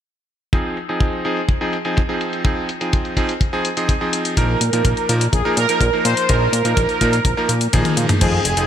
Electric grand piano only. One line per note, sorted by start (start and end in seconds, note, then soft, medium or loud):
0.53 0.76 F3 medium
0.53 0.76 C4 medium
0.53 0.76 D#4 medium
0.53 0.76 G#4 medium
0.89 1.22 F3 medium
0.89 1.22 C4 medium
0.89 1.22 D#4 medium
0.89 1.22 G#4 medium
1.25 1.39 F3 medium
1.25 1.39 C4 medium
1.25 1.39 D#4 medium
1.25 1.39 G#4 medium
1.61 1.75 F3 medium
1.61 1.75 C4 medium
1.61 1.75 D#4 medium
1.61 1.75 G#4 medium
1.85 1.99 F3 medium
1.85 1.99 C4 medium
1.85 1.99 D#4 medium
1.85 1.99 G#4 medium
2.09 2.42 F3 medium
2.09 2.42 C4 medium
2.09 2.42 D#4 medium
2.09 2.42 G#4 medium
2.45 2.67 F3 medium
2.45 2.67 C4 medium
2.45 2.67 D#4 medium
2.45 2.67 G#4 medium
2.81 3.14 F3 medium
2.81 3.14 C4 medium
2.81 3.14 D#4 medium
2.81 3.14 G#4 medium
3.17 3.31 F3 medium
3.17 3.31 C4 medium
3.17 3.31 D#4 medium
3.17 3.31 G#4 medium
3.53 3.67 F3 medium
3.53 3.67 C4 medium
3.53 3.67 D#4 medium
3.53 3.67 G#4 medium
3.77 3.91 F3 medium
3.77 3.91 C4 medium
3.77 3.91 D#4 medium
3.77 3.91 G#4 medium
4.01 4.34 F3 medium
4.01 4.34 C4 medium
4.01 4.34 D#4 medium
4.01 4.34 G#4 medium
4.37 4.60 F3 medium
4.37 4.60 A#3 medium
4.37 4.60 D#4 medium
4.37 4.60 A#4 medium
4.73 5.06 F3 medium
4.73 5.06 A#3 medium
4.73 5.06 D#4 medium
4.73 5.06 A#4 medium
5.09 5.23 F3 medium
5.09 5.23 A#3 medium
5.09 5.23 D#4 medium
5.09 5.23 A#4 loud
5.45 5.59 F3 medium
5.45 5.59 A#3 medium
5.45 5.59 D#4 medium
5.45 5.59 A#4 medium
5.69 5.83 F3 medium
5.69 5.83 A#3 medium
5.69 5.83 D#4 medium
5.69 5.83 A#4 medium
5.93 6.26 F3 medium
5.93 6.26 A#3 medium
5.93 6.26 D#4 medium
5.93 6.26 A#4 medium
6.29 6.52 F3 medium
6.29 6.52 A#3 medium
6.29 6.52 D#4 medium
6.29 6.52 A#4 medium
6.65 6.98 F3 medium
6.65 6.98 A#3 medium
6.65 6.98 D#4 medium
6.65 6.98 A#4 medium
7.01 7.15 F3 medium
7.01 7.15 A#3 medium
7.01 7.15 D#4 medium
7.01 7.15 A#4 loud
7.37 7.51 F3 medium
7.37 7.51 A#3 medium
7.37 7.51 D#4 medium
7.37 7.51 A#4 medium
7.73 8.18 F3 medium
7.73 8.18 A#3 medium
7.73 8.18 D#4 medium
7.73 8.18 G#4 loud
8.21 8.44 F3 medium
8.21 8.44 C4 medium
8.21 8.44 D#4 medium
8.21 8.44 G#4 medium
8.57 8.67 F3 medium
8.57 8.67 C4 medium
8.57 8.67 D#4 medium
8.57 8.67 G#4 medium